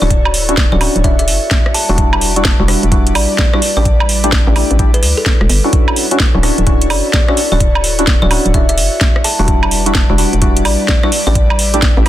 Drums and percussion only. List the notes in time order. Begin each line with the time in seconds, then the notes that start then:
0.10 kick, closed hi-hat
0.25 high woodblock
0.34 open hi-hat
0.49 closed hi-hat
0.57 kick, snare, closed hi-hat
0.81 open hi-hat, high woodblock
0.96 closed hi-hat
1.04 kick, closed hi-hat
1.19 closed hi-hat
1.28 open hi-hat
1.51 kick, snare, closed hi-hat
1.66 cross-stick
1.74 open hi-hat
1.98 kick, closed hi-hat
2.13 high woodblock
2.21 open hi-hat
2.36 closed hi-hat
2.45 kick, snare, closed hi-hat
2.68 cross-stick, open hi-hat
2.83 closed hi-hat
2.92 kick, closed hi-hat
3.07 closed hi-hat
3.15 open hi-hat, high woodblock
3.39 kick, snare, closed hi-hat
3.53 cross-stick
3.62 open hi-hat
3.85 kick, closed hi-hat
4.00 high woodblock
4.09 open hi-hat
4.24 closed hi-hat
4.32 kick, snare, closed hi-hat
4.56 open hi-hat, high woodblock
4.71 closed hi-hat
4.79 kick, closed hi-hat
4.94 closed hi-hat
5.03 open hi-hat
5.26 kick, snare, closed hi-hat
5.41 cross-stick
5.49 open hi-hat
5.73 kick, closed hi-hat
5.88 high woodblock
5.96 open hi-hat
6.11 closed hi-hat
6.20 kick, snare, closed hi-hat
6.43 cross-stick, open hi-hat
6.58 closed hi-hat
6.67 kick, closed hi-hat
6.82 closed hi-hat
6.90 open hi-hat, high woodblock
7.14 kick, snare, closed hi-hat
7.28 cross-stick
7.37 open hi-hat
7.60 kick, closed hi-hat
7.75 high woodblock
7.84 open hi-hat
7.99 closed hi-hat
8.07 kick, snare, closed hi-hat
8.31 open hi-hat, high woodblock
8.46 closed hi-hat
8.54 kick, closed hi-hat
8.69 closed hi-hat
8.78 open hi-hat
9.01 kick, snare, closed hi-hat
9.16 cross-stick
9.24 open hi-hat
9.48 kick, closed hi-hat
9.63 high woodblock
9.71 open hi-hat
9.86 closed hi-hat
9.95 kick, snare, closed hi-hat
10.18 open hi-hat
10.33 closed hi-hat
10.42 kick, closed hi-hat
10.57 closed hi-hat
10.65 open hi-hat, high woodblock
10.88 kick, snare, closed hi-hat
11.03 cross-stick
11.12 open hi-hat
11.35 kick, closed hi-hat
11.50 high woodblock
11.59 open hi-hat
11.74 closed hi-hat
11.82 kick, snare, closed hi-hat
12.06 cross-stick, open hi-hat, high woodblock